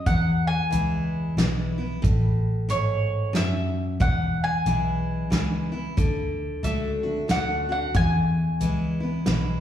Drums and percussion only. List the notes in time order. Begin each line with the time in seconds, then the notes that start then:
0.06 kick, closed hi-hat
0.72 closed hi-hat
1.38 snare, closed hi-hat
2.04 kick, closed hi-hat
2.69 closed hi-hat
3.35 snare, closed hi-hat
4.00 kick, closed hi-hat
4.66 closed hi-hat
5.32 snare, closed hi-hat
5.98 kick, closed hi-hat
6.64 closed hi-hat
7.29 snare, closed hi-hat
7.94 kick, closed hi-hat
8.61 closed hi-hat
9.26 snare, closed hi-hat